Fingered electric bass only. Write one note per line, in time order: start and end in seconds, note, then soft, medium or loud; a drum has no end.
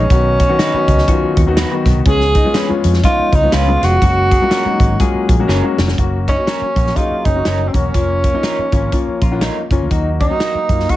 0.10 0.48 B1 loud
0.74 muted fingered electric bass stroke soft
0.88 1.03 C#2 loud
1.23 muted fingered electric bass stroke medium
1.37 1.63 D#2 medium
1.86 1.93 B1 loud
1.97 2.04 C2 medium
2.06 2.43 C#2 loud
2.70 muted fingered electric bass stroke soft
2.84 2.99 F2 loud
3.19 muted fingered electric bass stroke soft
3.33 3.48 C#2 medium
3.53 3.75 C#2 loud
3.82 3.97 F1 medium
4.02 4.39 F#1 loud
4.65 muted fingered electric bass stroke soft
4.80 4.95 G#1 loud
5.15 muted fingered electric bass stroke soft
5.29 5.44 A#1 medium
5.48 5.60 F#1 loud
5.78 5.93 F1 loud
5.98 6.36 F#1 medium
6.61 muted fingered electric bass stroke soft
6.76 6.91 A#1 medium
7.11 muted fingered electric bass stroke soft
7.25 7.41 F#1 medium
7.46 7.68 F#1 medium
7.74 7.89 E1 medium
7.94 8.32 F1 medium
8.58 muted fingered electric bass stroke soft
8.73 8.88 G#1 loud
9.08 muted fingered electric bass stroke soft
9.22 9.48 A#1 medium
9.71 9.79 F#1 medium
9.81 9.89 D2 medium
9.91 10.29 D#2 medium
10.55 muted fingered electric bass stroke soft
10.69 10.85 F#2 medium